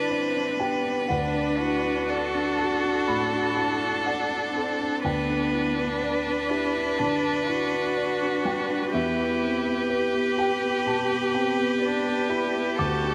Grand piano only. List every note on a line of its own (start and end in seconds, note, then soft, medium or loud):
0.00 1.11 D3 soft
0.00 0.35 D4 medium
0.00 1.11 E4 soft
0.00 0.60 G4 medium
0.00 0.11 D5 medium
0.00 0.55 A5 medium
0.11 0.50 D5 medium
0.35 0.74 D4 medium
0.60 0.99 G4 medium
0.60 1.06 G5 medium
0.85 1.09 D4 soft
1.08 3.04 D2 medium
1.08 2.53 F#5 medium
1.34 1.74 D4 medium
1.59 1.84 E4 soft
1.84 2.23 D4 medium
2.09 2.48 D5 medium
2.34 2.73 D4 medium
2.58 2.98 A4 medium
2.58 3.04 A5 medium
2.84 3.23 D4 soft
3.08 3.47 A2 soft
3.08 3.53 B5 medium
3.33 3.72 D4 soft
3.57 3.81 E4 soft
3.57 4.02 A5 medium
3.83 4.21 D4 soft
4.06 4.46 D5 medium
4.06 4.99 F#5 medium
4.31 4.70 D4 soft
4.56 4.94 A4 medium
4.81 5.04 D4 soft
5.04 6.95 D2 medium
5.04 6.95 G5 medium
5.29 5.67 D4 soft
5.54 5.77 E4 soft
5.78 6.16 D4 soft
6.02 6.41 D5 medium
6.26 6.65 D4 medium
6.51 6.89 G4 medium
6.75 7.14 D4 soft
6.98 7.38 D3 soft
6.98 8.40 A5 medium
7.25 7.63 D4 soft
7.48 7.72 E4 soft
7.73 8.11 D4 soft
7.97 8.35 D5 medium
8.21 8.59 D4 soft
8.45 8.83 G3 soft
8.45 8.90 G5 medium
8.69 8.93 D4 soft
8.93 10.82 E2 medium
8.93 10.34 E5 medium
9.18 9.56 B3 soft
9.41 9.65 C4 soft
9.66 10.04 B3 medium
9.90 10.28 B4 medium
10.13 10.52 B3 medium
10.38 10.76 G4 medium
10.38 10.83 G5 medium
10.62 11.00 B3 medium
10.86 11.24 B2 medium
10.86 11.31 A5 medium
11.10 11.48 B3 soft
11.33 11.57 C4 soft
11.33 11.78 G5 medium
11.57 11.96 B3 soft
11.82 12.20 B4 medium
12.05 12.44 B3 medium
12.29 12.69 G4 medium
12.29 12.75 B5 medium
12.54 12.78 B3 soft
12.79 13.15 D2 medium
12.79 13.15 D6 medium
13.03 13.15 D4 medium